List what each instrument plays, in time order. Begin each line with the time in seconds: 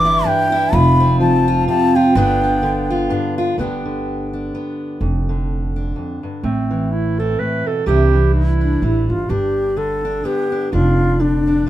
Already playing: upright bass G1, steel-string acoustic guitar G2 E3 D4, bansuri D6
0.05 steel-string acoustic guitar E4
0.25 steel-string acoustic guitar G2 D4, bansuri G5
0.52 steel-string acoustic guitar E4
0.72 upright bass F1, steel-string acoustic guitar F2 F4, bansuri B5
1.00 steel-string acoustic guitar C4
1.20 steel-string acoustic guitar F3, bansuri A5
1.48 steel-string acoustic guitar F4
1.68 steel-string acoustic guitar C3 C4, bansuri A5
1.95 steel-string acoustic guitar F4, bansuri G5
2.15 upright bass G1, steel-string acoustic guitar G2 D3 B3 D4 F4
2.43 steel-string acoustic guitar D4
2.63 steel-string acoustic guitar D3
2.90 steel-string acoustic guitar F4
3.09 steel-string acoustic guitar G2 D4
3.38 steel-string acoustic guitar F4
3.58 upright bass G1, steel-string acoustic guitar G2 D3 B3 D4 G4
3.85 steel-string acoustic guitar D3
4.33 steel-string acoustic guitar D4
4.55 steel-string acoustic guitar B3
5.01 upright bass F1, steel-string acoustic guitar F2
5.29 steel-string acoustic guitar D3
5.76 steel-string acoustic guitar D4
5.96 steel-string acoustic guitar F2
6.23 steel-string acoustic guitar G2
6.43 upright bass A1, steel-string acoustic guitar A2, clarinet C4
6.71 steel-string acoustic guitar E3
6.92 clarinet E4
7.19 steel-string acoustic guitar C4, clarinet A4
7.39 steel-string acoustic guitar A2, clarinet B4
7.67 steel-string acoustic guitar B2, clarinet A4
7.86 upright bass C2, steel-string acoustic guitar C3 E3 G3 D4 E4, clarinet G4
8.13 steel-string acoustic guitar E3
8.34 clarinet E4
8.61 steel-string acoustic guitar D4, bansuri D4
8.82 upright bass A1, steel-string acoustic guitar G3, bansuri E4
9.10 upright bass G1, bansuri F4
9.29 upright bass G1, steel-string acoustic guitar G2 D4, bansuri G4
9.77 steel-string acoustic guitar D3, bansuri A4
10.05 steel-string acoustic guitar D4
10.24 steel-string acoustic guitar D3 B3, bansuri G4
10.52 steel-string acoustic guitar D4
10.72 upright bass F1, steel-string acoustic guitar F2 D4, bansuri F4
11.20 steel-string acoustic guitar D3, bansuri D4
11.47 steel-string acoustic guitar D4
11.66 steel-string acoustic guitar D3